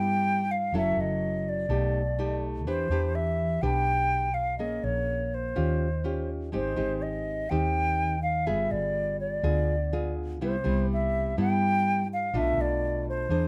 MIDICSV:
0, 0, Header, 1, 4, 480
1, 0, Start_track
1, 0, Tempo, 483481
1, 724, Time_signature, 4, 2, 24, 8
1, 13381, End_track
2, 0, Start_track
2, 0, Title_t, "Flute"
2, 0, Program_c, 0, 73
2, 0, Note_on_c, 0, 79, 97
2, 510, Note_on_c, 0, 77, 79
2, 525, Note_off_c, 0, 79, 0
2, 737, Note_off_c, 0, 77, 0
2, 766, Note_on_c, 0, 76, 80
2, 1000, Note_on_c, 0, 75, 73
2, 1015, Note_off_c, 0, 76, 0
2, 1478, Note_on_c, 0, 74, 70
2, 1493, Note_off_c, 0, 75, 0
2, 2422, Note_off_c, 0, 74, 0
2, 2659, Note_on_c, 0, 72, 81
2, 3130, Note_on_c, 0, 76, 78
2, 3145, Note_off_c, 0, 72, 0
2, 3593, Note_on_c, 0, 79, 99
2, 3608, Note_off_c, 0, 76, 0
2, 4309, Note_on_c, 0, 77, 78
2, 4324, Note_off_c, 0, 79, 0
2, 4546, Note_off_c, 0, 77, 0
2, 4552, Note_on_c, 0, 75, 76
2, 4803, Note_on_c, 0, 73, 77
2, 4818, Note_off_c, 0, 75, 0
2, 5305, Note_on_c, 0, 72, 69
2, 5320, Note_off_c, 0, 73, 0
2, 6256, Note_off_c, 0, 72, 0
2, 6509, Note_on_c, 0, 72, 75
2, 6973, Note_on_c, 0, 75, 76
2, 6987, Note_off_c, 0, 72, 0
2, 7444, Note_on_c, 0, 79, 95
2, 7459, Note_off_c, 0, 75, 0
2, 8161, Note_off_c, 0, 79, 0
2, 8167, Note_on_c, 0, 77, 72
2, 8403, Note_on_c, 0, 76, 75
2, 8418, Note_off_c, 0, 77, 0
2, 8649, Note_on_c, 0, 74, 84
2, 8664, Note_off_c, 0, 76, 0
2, 9129, Note_off_c, 0, 74, 0
2, 9135, Note_on_c, 0, 74, 70
2, 10052, Note_off_c, 0, 74, 0
2, 10358, Note_on_c, 0, 72, 76
2, 10790, Note_off_c, 0, 72, 0
2, 10852, Note_on_c, 0, 76, 85
2, 11278, Note_off_c, 0, 76, 0
2, 11325, Note_on_c, 0, 79, 97
2, 11987, Note_off_c, 0, 79, 0
2, 12045, Note_on_c, 0, 77, 84
2, 12284, Note_on_c, 0, 76, 81
2, 12299, Note_off_c, 0, 77, 0
2, 12520, Note_on_c, 0, 74, 78
2, 12535, Note_off_c, 0, 76, 0
2, 12984, Note_off_c, 0, 74, 0
2, 13000, Note_on_c, 0, 72, 70
2, 13381, Note_off_c, 0, 72, 0
2, 13381, End_track
3, 0, Start_track
3, 0, Title_t, "Nylon-string guitar"
3, 0, Program_c, 1, 24
3, 0, Note_on_c, 1, 43, 45
3, 0, Note_on_c, 1, 55, 41
3, 0, Note_on_c, 1, 59, 43
3, 0, Note_on_c, 1, 64, 47
3, 415, Note_off_c, 1, 55, 0
3, 419, Note_off_c, 1, 59, 0
3, 420, Note_off_c, 1, 64, 0
3, 706, Note_off_c, 1, 43, 0
3, 732, Note_on_c, 1, 54, 50
3, 735, Note_on_c, 1, 61, 46
3, 744, Note_on_c, 1, 64, 49
3, 744, Note_on_c, 1, 69, 53
3, 1651, Note_off_c, 1, 61, 0
3, 1653, Note_off_c, 1, 64, 0
3, 1656, Note_off_c, 1, 69, 0
3, 1666, Note_off_c, 1, 54, 0
3, 1684, Note_on_c, 1, 47, 49
3, 1684, Note_on_c, 1, 57, 44
3, 1687, Note_on_c, 1, 63, 41
3, 1695, Note_on_c, 1, 67, 61
3, 1993, Note_off_c, 1, 57, 0
3, 1994, Note_off_c, 1, 63, 0
3, 1999, Note_off_c, 1, 67, 0
3, 2171, Note_on_c, 1, 57, 51
3, 2176, Note_on_c, 1, 63, 48
3, 2180, Note_on_c, 1, 67, 53
3, 2621, Note_off_c, 1, 47, 0
3, 2630, Note_off_c, 1, 57, 0
3, 2630, Note_off_c, 1, 63, 0
3, 2634, Note_off_c, 1, 67, 0
3, 2650, Note_on_c, 1, 52, 51
3, 2651, Note_on_c, 1, 62, 48
3, 2656, Note_on_c, 1, 67, 53
3, 2660, Note_on_c, 1, 71, 55
3, 2848, Note_off_c, 1, 62, 0
3, 2852, Note_off_c, 1, 67, 0
3, 2854, Note_off_c, 1, 71, 0
3, 2886, Note_on_c, 1, 62, 48
3, 2897, Note_on_c, 1, 67, 61
3, 2901, Note_on_c, 1, 71, 67
3, 3568, Note_off_c, 1, 62, 0
3, 3573, Note_off_c, 1, 67, 0
3, 3573, Note_off_c, 1, 71, 0
3, 3584, Note_off_c, 1, 52, 0
3, 3598, Note_on_c, 1, 47, 42
3, 3603, Note_on_c, 1, 67, 50
3, 3604, Note_on_c, 1, 62, 48
3, 3608, Note_on_c, 1, 71, 55
3, 4249, Note_off_c, 1, 62, 0
3, 4250, Note_off_c, 1, 67, 0
3, 4252, Note_off_c, 1, 71, 0
3, 4538, Note_off_c, 1, 47, 0
3, 4558, Note_on_c, 1, 58, 51
3, 4563, Note_on_c, 1, 61, 50
3, 4568, Note_on_c, 1, 68, 46
3, 5209, Note_off_c, 1, 68, 0
3, 5210, Note_off_c, 1, 61, 0
3, 5500, Note_off_c, 1, 58, 0
3, 5514, Note_on_c, 1, 51, 44
3, 5518, Note_on_c, 1, 61, 49
3, 5522, Note_on_c, 1, 65, 44
3, 5524, Note_on_c, 1, 67, 46
3, 5832, Note_off_c, 1, 65, 0
3, 5833, Note_off_c, 1, 61, 0
3, 5835, Note_off_c, 1, 67, 0
3, 5998, Note_on_c, 1, 61, 47
3, 6005, Note_on_c, 1, 65, 49
3, 6011, Note_on_c, 1, 67, 47
3, 6457, Note_off_c, 1, 51, 0
3, 6464, Note_off_c, 1, 61, 0
3, 6467, Note_off_c, 1, 65, 0
3, 6469, Note_off_c, 1, 67, 0
3, 6474, Note_on_c, 1, 56, 54
3, 6481, Note_on_c, 1, 60, 48
3, 6485, Note_on_c, 1, 63, 55
3, 6490, Note_on_c, 1, 67, 51
3, 6684, Note_off_c, 1, 60, 0
3, 6688, Note_off_c, 1, 63, 0
3, 6689, Note_off_c, 1, 67, 0
3, 6715, Note_on_c, 1, 60, 48
3, 6722, Note_on_c, 1, 63, 54
3, 6726, Note_on_c, 1, 67, 58
3, 7403, Note_off_c, 1, 60, 0
3, 7406, Note_off_c, 1, 63, 0
3, 7409, Note_off_c, 1, 67, 0
3, 7418, Note_off_c, 1, 56, 0
3, 7453, Note_on_c, 1, 51, 46
3, 7454, Note_on_c, 1, 60, 50
3, 7458, Note_on_c, 1, 63, 46
3, 7464, Note_on_c, 1, 67, 54
3, 8095, Note_off_c, 1, 60, 0
3, 8098, Note_off_c, 1, 63, 0
3, 8101, Note_off_c, 1, 67, 0
3, 8387, Note_off_c, 1, 51, 0
3, 8405, Note_on_c, 1, 65, 56
3, 8406, Note_on_c, 1, 59, 53
3, 8408, Note_on_c, 1, 55, 55
3, 8411, Note_on_c, 1, 68, 61
3, 9327, Note_off_c, 1, 65, 0
3, 9329, Note_off_c, 1, 59, 0
3, 9330, Note_off_c, 1, 68, 0
3, 9344, Note_off_c, 1, 55, 0
3, 9366, Note_on_c, 1, 50, 43
3, 9367, Note_on_c, 1, 59, 46
3, 9371, Note_on_c, 1, 65, 45
3, 9372, Note_on_c, 1, 68, 52
3, 9676, Note_off_c, 1, 59, 0
3, 9678, Note_off_c, 1, 68, 0
3, 9679, Note_off_c, 1, 65, 0
3, 9855, Note_on_c, 1, 59, 48
3, 9860, Note_on_c, 1, 65, 48
3, 9861, Note_on_c, 1, 68, 51
3, 10303, Note_off_c, 1, 50, 0
3, 10313, Note_off_c, 1, 59, 0
3, 10314, Note_off_c, 1, 65, 0
3, 10315, Note_off_c, 1, 68, 0
3, 10337, Note_on_c, 1, 48, 57
3, 10342, Note_on_c, 1, 55, 50
3, 10342, Note_on_c, 1, 59, 53
3, 10346, Note_on_c, 1, 64, 62
3, 10474, Note_off_c, 1, 55, 0
3, 10476, Note_off_c, 1, 59, 0
3, 10478, Note_off_c, 1, 64, 0
3, 10564, Note_on_c, 1, 55, 57
3, 10573, Note_on_c, 1, 59, 59
3, 10578, Note_on_c, 1, 64, 60
3, 11248, Note_off_c, 1, 55, 0
3, 11252, Note_off_c, 1, 59, 0
3, 11253, Note_off_c, 1, 64, 0
3, 11268, Note_off_c, 1, 48, 0
3, 11291, Note_on_c, 1, 43, 44
3, 11297, Note_on_c, 1, 55, 44
3, 11298, Note_on_c, 1, 59, 46
3, 11302, Note_on_c, 1, 64, 53
3, 11936, Note_off_c, 1, 55, 0
3, 11938, Note_off_c, 1, 59, 0
3, 11939, Note_off_c, 1, 64, 0
3, 12225, Note_off_c, 1, 43, 0
3, 12248, Note_on_c, 1, 47, 52
3, 12253, Note_on_c, 1, 57, 49
3, 12255, Note_on_c, 1, 62, 46
3, 12261, Note_on_c, 1, 65, 61
3, 13170, Note_off_c, 1, 57, 0
3, 13172, Note_off_c, 1, 62, 0
3, 13176, Note_off_c, 1, 65, 0
3, 13185, Note_off_c, 1, 47, 0
3, 13205, Note_on_c, 1, 52, 45
3, 13209, Note_on_c, 1, 62, 49
3, 13214, Note_on_c, 1, 68, 47
3, 13219, Note_on_c, 1, 72, 52
3, 13381, Note_off_c, 1, 52, 0
3, 13381, Note_off_c, 1, 62, 0
3, 13381, Note_off_c, 1, 68, 0
3, 13381, Note_off_c, 1, 72, 0
3, 13381, End_track
4, 0, Start_track
4, 0, Title_t, "Fretless electric bass"
4, 0, Program_c, 2, 35
4, 0, Note_on_c, 2, 43, 74
4, 717, Note_on_c, 2, 30, 78
4, 731, Note_off_c, 2, 43, 0
4, 943, Note_off_c, 2, 30, 0
4, 962, Note_on_c, 2, 30, 67
4, 1644, Note_off_c, 2, 30, 0
4, 1676, Note_on_c, 2, 35, 95
4, 2637, Note_off_c, 2, 35, 0
4, 2637, Note_on_c, 2, 40, 84
4, 2864, Note_off_c, 2, 40, 0
4, 2874, Note_on_c, 2, 40, 73
4, 3560, Note_off_c, 2, 40, 0
4, 3599, Note_on_c, 2, 35, 85
4, 4566, Note_off_c, 2, 35, 0
4, 4566, Note_on_c, 2, 34, 86
4, 4789, Note_off_c, 2, 34, 0
4, 4801, Note_on_c, 2, 34, 74
4, 5484, Note_off_c, 2, 34, 0
4, 5530, Note_on_c, 2, 39, 79
4, 6500, Note_on_c, 2, 32, 85
4, 6515, Note_off_c, 2, 39, 0
4, 6717, Note_off_c, 2, 32, 0
4, 6735, Note_on_c, 2, 32, 68
4, 7411, Note_off_c, 2, 32, 0
4, 7457, Note_on_c, 2, 39, 79
4, 8412, Note_on_c, 2, 31, 80
4, 8427, Note_off_c, 2, 39, 0
4, 8633, Note_off_c, 2, 31, 0
4, 8651, Note_on_c, 2, 31, 73
4, 9330, Note_off_c, 2, 31, 0
4, 9364, Note_on_c, 2, 38, 88
4, 10332, Note_off_c, 2, 38, 0
4, 10332, Note_on_c, 2, 36, 77
4, 10553, Note_off_c, 2, 36, 0
4, 10578, Note_on_c, 2, 36, 74
4, 11253, Note_off_c, 2, 36, 0
4, 11297, Note_on_c, 2, 43, 80
4, 12246, Note_on_c, 2, 35, 86
4, 12261, Note_off_c, 2, 43, 0
4, 12470, Note_off_c, 2, 35, 0
4, 12474, Note_on_c, 2, 35, 67
4, 13161, Note_off_c, 2, 35, 0
4, 13197, Note_on_c, 2, 40, 81
4, 13381, Note_off_c, 2, 40, 0
4, 13381, End_track
0, 0, End_of_file